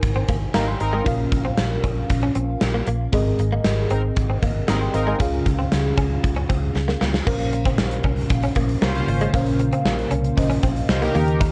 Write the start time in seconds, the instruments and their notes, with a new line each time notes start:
Already playing: fm electric piano G#2 D#4 A#4 C5 G#5
0.03 fingered electric bass G#1, muted clean electric guitar stroke, kick, closed hi-hat
0.16 clean electric guitar C4
0.28 fingered electric bass G#1, clean electric guitar A#3, kick, closed hi-hat
0.54 fingered electric bass G#1, clean electric guitar A#3, analog polysynth C4 D#4 A#4, fm electric piano F5 A#5, snare, closed hi-hat
0.68 fm electric piano G5 C6
0.80 fingered electric bass G#1, analog polysynth C4 D#4 A#4, muted clean electric guitar stroke, closed hi-hat
0.93 clean electric guitar G#3, fm electric piano A#5 D#6
1.05 fingered electric bass A#1, fm electric piano A#2 C#4 F4 A#4 F5, clean electric guitar A#3, kick, closed hi-hat
1.32 fingered electric bass A#1, muted clean electric guitar stroke, kick, closed hi-hat
1.45 clean electric guitar C4
1.57 fingered electric bass A#1, snare, closed hi-hat
1.84 fingered electric bass A#1, clean electric guitar C#4, kick, closed hi-hat
2.10 fingered electric bass A#1, muted clean electric guitar stroke, kick, closed hi-hat
2.23 clean electric guitar C#4
2.35 fingered electric bass A#1, clean electric guitar C4, closed hi-hat
2.61 fingered electric bass A#1, muted clean electric guitar stroke, snare, closed hi-hat
2.74 clean electric guitar A#3
2.87 fingered electric bass A#1, clean electric guitar A#3, closed hi-hat
3.12 fingered electric bass G#1, fm electric piano G#2 C4 G#4 A#4 D#5, clean electric guitar G#3, kick, closed hi-hat
3.39 fingered electric bass G#1, muted clean electric guitar stroke, closed hi-hat
3.52 clean electric guitar A#3
3.64 fingered electric bass G#1, snare, closed hi-hat
3.90 fingered electric bass G#1, clean electric guitar C4, analog polysynth C4 D#4 A#4, closed hi-hat
4.16 fingered electric bass G#1, muted clean electric guitar stroke, kick, closed hi-hat
4.30 clean electric guitar C4
4.43 fingered electric bass G#1, clean electric guitar A#3, kick, closed hi-hat
4.68 fingered electric bass G#1, clean electric guitar A#3, analog polysynth C4 D#4 A#4, fm electric piano A#5 D#6, snare, closed hi-hat
4.81 fm electric piano G5 C6
4.94 fingered electric bass G#1, analog polysynth C4 D#4 A#4, fm electric piano F5 A#5, muted clean electric guitar stroke, closed hi-hat
5.07 clean electric guitar G#3, fm electric piano D#5 G#5
5.19 fingered electric bass C#2, fm electric piano C#3 C#4 F4 G#4 F5, clean electric guitar C#4, kick, closed hi-hat
5.46 fingered electric bass C#2, muted clean electric guitar stroke, kick, closed hi-hat
5.59 clean electric guitar C4
5.72 fingered electric bass C#2, snare, closed hi-hat
5.97 fingered electric bass C#2, clean electric guitar C#4, kick, closed hi-hat
6.24 fingered electric bass C#2, muted clean electric guitar stroke, kick, closed hi-hat
6.36 clean electric guitar C#4
6.49 fingered electric bass C#2, clean electric guitar C4, kick, closed hi-hat
6.75 fingered electric bass C#2, muted clean electric guitar stroke, snare
6.88 clean electric guitar A#3, snare
7.01 fingered electric bass C#2, clean electric guitar A#3, snare
7.14 snare
7.26 fingered electric bass A#1, fm electric piano A#2 C#4 A#4 C5 F5, ambient pad C#3 A#3 F4 C5, clean electric guitar A#3, kick, crash
7.40 closed hi-hat
7.53 muted clean electric guitar stroke, closed hi-hat
7.65 clean electric guitar C4, kick, closed hi-hat
7.78 fingered electric bass A#1, snare
7.91 closed hi-hat
8.04 fingered electric bass C2, clean electric guitar C#4, kick, closed hi-hat
8.16 closed hi-hat
8.30 fingered electric bass A#1, muted clean electric guitar stroke, kick, closed hi-hat
8.43 clean electric guitar C#4, closed hi-hat
8.55 fingered electric bass A#1, clean electric guitar A#3, kick, closed hi-hat
8.69 closed hi-hat
8.82 fingered electric bass C2, clean electric guitar A#3, analog polysynth C#4 F4 C5, snare
8.95 analog polysynth C#4 F4 C5, closed hi-hat
9.07 fingered electric bass G#1, muted clean electric guitar stroke, open hi-hat
9.21 clean electric guitar G#3, closed hi-hat
9.33 fingered electric bass A#1, fm electric piano A#2 C#4 A#4 C5 F5, clean electric guitar A#3, kick, closed hi-hat
9.46 closed hi-hat
9.60 muted clean electric guitar stroke, closed hi-hat
9.73 clean electric guitar C4, closed hi-hat
9.85 fingered electric bass A#1, snare
9.99 closed hi-hat
10.11 fingered electric bass C2, clean electric guitar C#4, closed hi-hat
10.24 closed hi-hat
10.37 fingered electric bass A#1, fm electric piano C#4 A#4 C5 D#5, muted clean electric guitar stroke, kick, closed hi-hat
10.50 clean electric guitar C#4, closed hi-hat
10.63 fingered electric bass A#1, clean electric guitar C4, kick, closed hi-hat
10.76 closed hi-hat
10.89 fingered electric bass C2, analog polysynth C#4 F4 C5, muted clean electric guitar stroke, snare
11.02 clean electric guitar A#3, analog polysynth D#4 G4 A#4, closed hi-hat
11.14 fingered electric bass D#2, fm electric piano D#3 D#4 G4 A#4 G5, ambient pad D#3 G3 A#3 G4, clean electric guitar A#3, open hi-hat
11.28 closed hi-hat
11.40 clean electric guitar D#4, kick, closed hi-hat